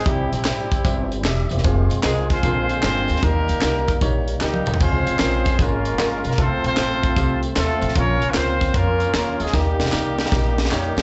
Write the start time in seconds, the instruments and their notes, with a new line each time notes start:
0.05 upright bass C2, upright piano C3 C4 E4 G4, tonewheel organ G3 C4 D#4, horn section G3 C4 E4 G4, kick, closed hi-hat, tambourine
0.11 tonewheel organ E4
0.32 upright bass A#1, horn section G3 C4 E4 G4, closed hi-hat, tambourine
0.44 upright bass G#1, upright piano C4 E4 G4, snare, clap, closed hi-hat, tambourine
0.71 kick, closed hi-hat, tambourine
0.84 upright bass G1, upright piano C4 E4 G4, kick, closed hi-hat, tambourine
1.12 closed hi-hat, tambourine
1.24 upright bass E1, upright piano E4 G4, tonewheel organ G4 E5, snare, clap, closed hi-hat, tambourine
1.49 upright bass E1, tonewheel organ A#3 G4, upright piano C4 E4, closed hi-hat, tambourine
1.58 snare
1.63 upright bass F1, tonewheel organ G#3 C4 F4, upright piano C4 F4 G#4, kick, closed hi-hat, tambourine
1.90 upright bass A#1, closed hi-hat, tambourine
2.03 upright bass C2, horn section G#3 G#4, upright piano C4 F4 A#4, snare, clap, closed hi-hat, tambourine
2.30 horn section C4 F4 G#4 C5, kick, snare, closed hi-hat, tambourine
2.43 upright bass A#1, upright piano A#2 G#3 C4 D4 F4 A#4, tonewheel organ D3 G#3 A#3 C4 F4, kick, closed hi-hat, tambourine
2.69 closed hi-hat, tambourine
2.83 upright bass G1, upright piano G#3 C4 D4 F4 G#4, horn section C4 F4 G#4 C5, snare, clap, closed hi-hat, tambourine
3.08 upright bass D2, closed hi-hat, tambourine
3.16 snare
3.22 upright bass D#2, upright piano D#3 D#4 G4 A#4, tonewheel organ G3 A#3 D#4, horn section A#3 D#4 G4 A#4, kick, closed hi-hat, tambourine
3.48 upright bass C#2, closed hi-hat, tambourine
3.61 upright bass C2, upright piano D#4 G4 A#4, snare, clap, closed hi-hat, tambourine
3.88 kick, closed hi-hat, tambourine
4.01 upright bass A#1, upright piano D#4 G4 C#5, kick, closed hi-hat, tambourine
4.27 closed hi-hat, tambourine
4.40 upright bass C#2, horn section G3 A#3 D#4 G4, upright piano D#4 G4 A#4, snare, clap, tambourine
4.54 high tom
4.66 upright bass C2, mid tom, tambourine
4.74 floor tom
4.80 upright bass C#2, upright piano C#3 C#4 F4 G#4, tonewheel organ G#3 C#4 F4, horn section C4 F4 G#4 C5, kick, tambourine, splash
5.06 upright bass C2, closed hi-hat, tambourine
5.19 upright bass A#1, upright piano C#4 F4 A#4, snare, clap, closed hi-hat, tambourine
5.45 kick, snare, closed hi-hat, tambourine
5.59 upright bass G#1, horn section A#3 C#4 F4 A#4, upright piano C#4 F4 G#4, kick, closed hi-hat, tambourine
5.85 closed hi-hat, tambourine
5.98 upright bass G1, upright piano C#4 F4 A#4, snare, clap, closed hi-hat, tambourine
6.24 upright bass B1, horn section A#3 A#4, closed hi-hat, tambourine
6.31 snare
6.38 upright bass C2, upright piano C3 C4 F4 A4, tonewheel organ A3 C4 D#4, horn section C4 F4 A4 C5, kick, closed hi-hat, tambourine
6.44 tonewheel organ F4
6.64 upright bass A#1, horn section C4 F4 A4 C5, closed hi-hat, tambourine
6.77 upright bass A1, upright piano C4 F4 C5, snare, clap, closed hi-hat, tambourine
7.03 kick, closed hi-hat, tambourine
7.16 upright bass C2, upright piano C4 F4 G4, kick, closed hi-hat, tambourine
7.43 closed hi-hat, tambourine
7.56 upright bass D#2, horn section A3 C4 F4 A4, upright piano C4 F4 C5, snare, clap, closed hi-hat, tambourine
7.81 upright bass A1, closed hi-hat, tambourine
7.88 snare
7.95 upright bass A#1, upright piano A#2 C#4 F4 A#4, tonewheel organ A#3 C4 F4, horn section C#4 F4 A#4 C#5, kick, closed hi-hat, tambourine
8.01 tonewheel organ C#4
8.22 upright bass C2, closed hi-hat, tambourine
8.30 horn section A#3 A#4
8.34 upright bass C#2, horn section C4 F4 C5, upright piano C#4 F4 A#4, snare, clap, closed hi-hat, tambourine
8.61 kick, snare, closed hi-hat, tambourine
8.74 upright bass F2, horn section A#3 C#4 F4 A#4, upright piano C#4 F4 A#4, kick, closed hi-hat, tambourine
9.00 closed hi-hat, tambourine
9.14 upright bass D#2, horn section A#3 A#4, upright piano C#4 F4 A#4, snare, clap, closed hi-hat, tambourine
9.40 upright bass D2, horn section G#3 G#4, closed hi-hat, tambourine
9.46 snare
9.53 upright bass D#2, upright piano D#3 D#4 G4 A#4, horn section G3 A#3 D#4 G4, tonewheel organ A#3 D#4 G4, kick, snare, tambourine
9.79 upright bass C#2, snare, tambourine
9.86 snare
9.92 upright bass C2, upright piano D#4 G4 A#4, snare, clap, tambourine
10.18 snare, tambourine
10.26 snare
10.32 upright bass A#1, upright piano D#4 G4 A#4, kick, snare, tambourine
10.58 snare, tambourine
10.65 snare
10.71 upright bass F2, horn section G3 A#3 D#4 G4, upright piano D#4 G4 C#5, snare, clap, tambourine
10.97 upright bass D#2, snare, tambourine